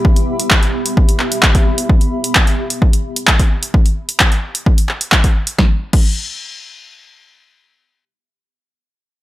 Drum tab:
CC |----------------|----------------|----------------|---x------------|
HH |-x-x-x-x-x-x-x-x|-x-x-x-x-x-x-x-x|-x-x-x-x-x-x-x-x|----------------|
CP |----x-----x-x---|----x-------x---|----x-----x-x---|----------------|
SD |----------------|----------------|----------------|o---------------|
BD |o---o---o---oo--|o---o---o---oo--|o---o---o---oo--|o--o------------|

CC |----------------|
HH |----------------|
CP |----------------|
SD |----------------|
BD |----------------|